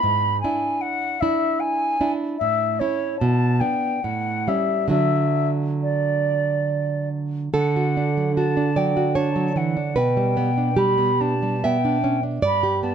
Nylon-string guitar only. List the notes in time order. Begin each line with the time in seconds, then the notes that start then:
0.03 G#2
0.44 D4 E4
1.22 D4 E4
2.01 D4 E4
2.41 A2
2.81 C#4 E4
3.21 B2
3.61 B3 D4
4.04 A2
4.48 G3 C#4
4.88 D3 F#3 D4
7.54 D3 A4
7.76 F#4
7.97 D4
8.17 F#3
8.37 F#4
8.57 D4
8.76 F#3 D5
8.97 F#4
9.15 D4 C#5
9.36 F#3
9.56 E3
9.77 D4
9.96 B2 B4
10.17 G3
10.37 B3
10.58 D4
10.77 G3 G4
10.98 B3
11.21 D4
11.43 G3
11.64 B3 E5
11.85 D4
12.04 C#4
12.23 D4
12.42 G2 D5
12.63 G4
12.83 B3